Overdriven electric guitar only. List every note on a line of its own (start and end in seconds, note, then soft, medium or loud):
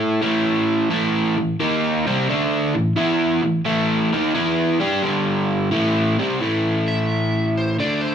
0.00 0.21 A3 loud
0.00 0.21 E4 medium
0.00 0.21 A4 loud
0.21 0.89 A2 medium
0.21 0.89 E3 loud
0.21 0.89 A3 medium
0.90 1.35 A2 medium
0.90 1.35 E3 loud
0.90 1.35 A3 medium
1.37 1.55 A2 medium
1.37 1.55 E3 medium
1.60 2.04 D#3 medium
1.60 2.04 A#3 loud
1.60 2.05 D#4 loud
2.07 2.27 C3 medium
2.07 2.27 G3 medium
2.07 2.28 C4 loud
2.29 2.73 D3 medium
2.29 2.74 A3 medium
2.29 2.74 D4 loud
2.75 2.92 A2 medium
2.75 2.92 E3 medium
2.96 3.41 E3 medium
2.96 3.42 B3 medium
2.96 3.42 E4 loud
3.43 3.61 A2 medium
3.43 3.61 E3 medium
3.65 4.10 A2 medium
3.65 4.10 E3 loud
3.65 4.10 A3 loud
4.12 4.33 D#3 medium
4.12 4.33 A#3 loud
4.12 4.34 D#4 loud
4.34 4.79 E3 loud
4.34 4.79 B3 medium
4.34 4.79 E4 medium
4.80 5.02 G3 medium
4.80 5.02 D4 medium
4.80 5.02 G4 loud
5.03 5.71 G2 medium
5.03 5.71 D3 medium
5.03 5.71 G3 loud
5.71 6.16 A2 medium
5.71 6.16 E3 loud
5.71 6.17 A3 medium
6.19 6.40 C3 medium
6.19 6.40 G3 loud
6.19 6.40 C4 loud
6.41 7.77 A2 medium
6.41 7.77 E3 medium
6.41 7.78 A3 medium
7.79 8.15 D3 medium
7.79 8.15 A3 medium
7.79 8.15 D4 medium